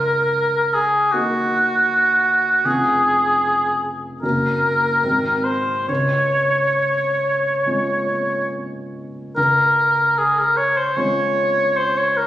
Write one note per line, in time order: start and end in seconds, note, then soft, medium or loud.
0.00 2.61 C#2 soft
0.00 0.76 A#4 medium
0.74 1.13 G#4 medium
1.12 2.62 A#3 soft
1.12 2.62 D#4 soft
1.12 2.67 F#4 medium
1.12 2.62 F#4 soft
2.65 4.19 F1 soft
2.65 4.19 C#4 soft
2.65 4.19 F4 soft
2.65 3.96 G#4 medium
2.65 4.19 G#4 soft
4.22 5.01 F#1 soft
4.22 4.99 A#3 soft
4.22 5.00 C#4 soft
4.22 5.00 F#4 soft
4.22 5.46 A#4 medium
5.03 5.86 G#1 soft
5.03 5.85 G#3 soft
5.03 5.85 C4 soft
5.03 5.85 F#4 soft
5.44 5.88 C5 medium
5.88 9.33 C#2 soft
5.88 8.47 C#5 medium
7.66 9.32 G#3 soft
7.66 9.33 C#4 soft
7.66 9.33 F4 soft
9.37 12.27 C#2 soft
9.37 10.20 A#4 medium
10.18 10.41 G#4 medium
10.39 10.59 A#4 medium
10.57 10.79 C#5 medium
10.77 10.99 C5 medium
10.97 12.27 G#3 soft
10.97 12.27 C#4 soft
10.97 12.27 F4 soft
10.97 11.79 C#5 medium
11.77 11.99 C5 medium
11.98 12.19 C#5 medium
12.17 12.27 A#4 medium